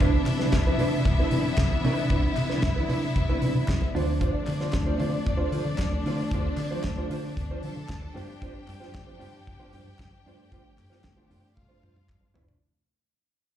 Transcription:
Already playing: C3 D4
0.00 C2 E3 B3 D4 E4 B4 E5, kick, closed hi-hat, muted conga
0.13 muted clean electric guitar stroke
0.26 C3, muted clean electric guitar stroke, clap, open hi-hat, muted conga
0.39 D4 E4 B4, snare, high conga
0.52 C2, muted clean electric guitar stroke, kick, snare, clap, closed hi-hat
0.65 D4 E4 B4, high conga
0.78 C3 D4 E4 B4, open hi-hat, muted conga, low conga
0.93 muted clean electric guitar stroke
1.05 C2, muted clean electric guitar stroke, kick, closed hi-hat, muted conga, low conga
1.19 D4 E4 B4
1.31 C3 D4 E4 B4, open hi-hat, high conga
1.45 C3, muted clean electric guitar stroke
1.57 C2, kick, snare, clap, closed hi-hat, high conga
1.72 muted clean electric guitar stroke
1.83 C3 D4 E4 B4, open hi-hat, muted conga, low conga
1.98 muted clean electric guitar stroke
2.10 C2 D4 E4 B4, kick, closed hi-hat, muted conga
2.24 muted clean electric guitar stroke
2.36 C3, muted clean electric guitar stroke, clap, open hi-hat, muted conga
2.49 D4 E4 B4, snare, high conga
2.62 C2, muted clean electric guitar stroke, kick, snare, clap, closed hi-hat
2.76 D4 E4 B4, high conga
2.88 C3 D4 E4 B4, open hi-hat, muted conga, high conga, low conga
3.03 muted clean electric guitar stroke
3.16 C2, muted clean electric guitar stroke, kick, closed hi-hat, low conga
3.29 D4 E4 B4
3.42 C3 D4 E4 B4, open hi-hat, muted conga, high conga
3.55 C3, muted clean electric guitar stroke
3.68 C2, kick, snare, clap, closed hi-hat, high conga
3.82 muted clean electric guitar stroke
3.94 D2 F3 A3 D4 F4 C5 D5, open hi-hat, muted conga, low conga
4.08 muted clean electric guitar stroke
4.20 D4 F4 C5, kick, closed hi-hat, muted conga
4.33 muted clean electric guitar stroke
4.47 D3, muted clean electric guitar stroke, clap, open hi-hat
4.61 D4 F4 C5, snare, high conga
4.72 D2, muted clean electric guitar stroke, kick, snare, clap, closed hi-hat, muted conga
4.86 D4 F4 C5, high conga
4.98 D3 D4 F4 C5, open hi-hat, low conga
5.12 muted clean electric guitar stroke
5.25 D2, muted clean electric guitar stroke, kick, closed hi-hat, low conga
5.37 D4 F4 C5
5.52 D3 D4 F4 C5, open hi-hat, high conga
5.65 D3, muted clean electric guitar stroke
5.78 D2, kick, snare, clap, closed hi-hat, muted conga, high conga
5.92 muted clean electric guitar stroke
6.04 D3 D4 F4 C5, open hi-hat, muted conga, low conga
6.19 muted clean electric guitar stroke
6.31 D2 D4 F4 C5, kick, closed hi-hat
6.47 muted clean electric guitar stroke
6.57 D3, muted clean electric guitar stroke, clap, open hi-hat, muted conga
6.71 D4 F4 C5, high conga
6.83 D2, muted clean electric guitar stroke, kick, snare, clap, closed hi-hat, muted conga
6.97 D4 F4 C5, high conga
7.10 D3 D4 F4 C5, open hi-hat, low conga
7.25 muted clean electric guitar stroke
7.37 D2, muted clean electric guitar stroke, kick, closed hi-hat, muted conga, low conga
7.51 D4 F4 C5
7.63 D3 D4 F4 A4 C5 A5, open hi-hat, muted conga, high conga
7.76 D3, muted clean electric guitar stroke
7.88 D2, kick, snare, clap, closed hi-hat, muted conga, high conga
8.02 muted clean electric guitar stroke
8.15 G2 G3 D4 F4 G4 C5 G5, open hi-hat, muted conga, low conga
8.29 muted clean electric guitar stroke
8.41 D4 F4 C5, kick, closed hi-hat
8.55 muted clean electric guitar stroke
8.67 G2, muted clean electric guitar stroke, clap, open hi-hat
8.80 D4 F4 C5, snare, high conga
8.94 G1, kick, snare, clap, closed hi-hat, muted conga
9.07 D4 F4 C5, high conga
9.19 G2 D4 F4 C5, open hi-hat, low conga
9.33 muted clean electric guitar stroke
9.47 G1, muted clean electric guitar stroke, kick, closed hi-hat, muted conga, low conga
9.60 D4 F4 C5
9.73 G2 D4 F4 C5, open hi-hat, high conga
9.87 G2, muted clean electric guitar stroke
9.99 G1, kick, snare, clap, closed hi-hat, muted conga, high conga
10.12 muted clean electric guitar stroke
10.25 G2 A3 D4 F4 C5, open hi-hat, muted conga, low conga
10.38 muted clean electric guitar stroke
10.51 G1 D4 F4 C5, kick, closed hi-hat
10.65 muted clean electric guitar stroke
10.77 G2, muted clean electric guitar stroke, clap, open hi-hat
10.90 D4 F4 C5, snare, high conga
11.03 G1, muted clean electric guitar stroke, kick, snare, clap, closed hi-hat, muted conga
11.17 D4 F4 C5, high conga
11.30 G2 D4 F4 C5, open hi-hat, low conga
11.43 muted clean electric guitar stroke
11.56 G1 F4 F5, muted clean electric guitar stroke, kick, high tom, low conga
11.69 D4 F4 C5
11.82 G2 D4 F4 C5, mid tom, muted conga, high conga
11.96 G2, muted clean electric guitar stroke, mid tom
12.09 G2, kick, clap, mid tom, muted conga, high conga
12.21 muted clean electric guitar stroke
12.34 F1 D4 F4 C5, floor tom, muted conga, low conga
12.47 muted clean electric guitar stroke, floor tom

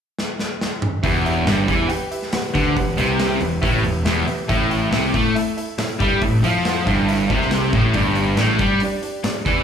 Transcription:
0.19 snare
0.39 snare
0.61 snare
0.82 mid tom
1.03 E1 E2 G4 B4 E5, kick, open hi-hat
1.24 G4 B4 E5, open hi-hat
1.45 G1 G2 G4 B4 E5, snare, open hi-hat
1.67 E2 E3 G4 B4 E5, kick, open hi-hat
1.88 G4 B4 G5, muted picked electric bass stroke, muted distorted electric guitar stroke, muted overdriven electric guitar stroke, open hi-hat
2.11 G4 B4 E5, open hi-hat
2.22 snare
2.31 G4 B4 F#5, muted picked electric bass stroke, muted distorted electric guitar stroke, muted overdriven electric guitar stroke, snare, open hi-hat
2.53 D2 D3 G4 B4 F#5, kick, open hi-hat
2.76 E1 E2 G4 B4 F#5, kick, open hi-hat
2.97 C2 C3 G4 B4 E5, open hi-hat
3.18 G4 B4 E5, snare, open hi-hat
3.40 E1 E2 G4 B4 E5, open hi-hat
3.61 A1 A2 G4 B4 E5, kick, open hi-hat
3.82 E1 E2 G4 B4 E5, open hi-hat
4.04 E1 E2 G4 B4 E5, snare, open hi-hat
4.25 G4 B4 E5, muted picked electric bass stroke, muted distorted electric guitar stroke, muted overdriven electric guitar stroke, open hi-hat
4.48 A1 A2 E4 A4 E5, kick, open hi-hat
4.70 E4 A4 G5, open hi-hat
4.91 C2 C3 E4 A4 E5, snare, open hi-hat
5.13 A2 A3 E4 A4 E5, kick, open hi-hat
5.34 E4 A4 E5, muted picked electric bass stroke, muted overdriven electric guitar stroke, muted distorted electric guitar stroke, open hi-hat
5.57 E4 A4 E5, open hi-hat
5.78 E4 A4 E5, muted picked electric bass stroke, muted overdriven electric guitar stroke, muted distorted electric guitar stroke, snare, open hi-hat
5.99 G2 G3 E4 A4 E5, kick, open hi-hat
6.21 A1 A2 E4 A4 E5, kick, open hi-hat
6.42 F2 F3 E4 A4 E5, open hi-hat
6.65 E4 A4 F#5, snare, open hi-hat
6.86 G1 G2 E4 A4 E5, kick, open hi-hat
7.08 E4 A4 E5, open hi-hat
7.28 C2 C3 E4 A4 C5, kick, open hi-hat
7.42 snare
7.49 E4 A4 E5, snare, open hi-hat
7.72 A1 A2 E4 A4 E5, kick, open hi-hat
7.93 G1 G2 D4 G4 D5, kick, open hi-hat
8.15 D4 G4 D5, open hi-hat
8.36 A1 A2 D4 G4 D5, snare, open hi-hat
8.59 G2 G3 D4 G4 D5, kick, open hi-hat
8.80 D4 G4 D5, muted overdriven electric guitar stroke, muted picked electric bass stroke, muted distorted electric guitar stroke, open hi-hat
9.02 D4 G4 D5, open hi-hat
9.24 D4 G4 D5, muted picked electric bass stroke, muted overdriven electric guitar stroke, muted distorted electric guitar stroke, snare, open hi-hat
9.45 E2 E3 D4 G4 D5, kick, open hi-hat

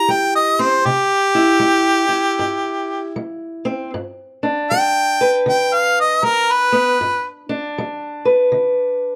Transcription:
Already playing: E4 G4 A#5
0.08 G3 G5
0.35 D#5
0.59 C4 C5
0.85 C3 G4
1.35 E4
1.60 G3
2.09 E4
2.39 G2
3.16 G3
3.65 C4
3.94 G2
4.43 D4
4.70 G3 G5
5.21 B4
5.46 D3 G5
5.74 F5
6.00 D#5
6.23 G3 A#4
6.52 B4
6.72 B3
7.01 G2
7.49 D4
7.78 G3
8.25 B4
8.52 D3

